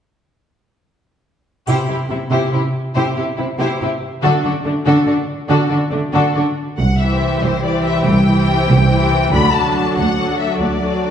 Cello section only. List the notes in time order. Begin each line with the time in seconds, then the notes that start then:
1.68 C3
1.89 C3
2.10 C3
2.31 C3
2.53 C3
2.96 C3
3.17 C3
3.38 C3
3.59 C3
3.81 C3
4.23 D3
4.44 D3
4.65 D3
4.86 D3
5.07 D3
5.49 D3
5.71 D3
5.92 D3
6.14 D3
6.35 D3
6.79 C2
7.43 C2
8.07 C2
8.71 C2
9.33 D2
9.97 D2
10.61 D2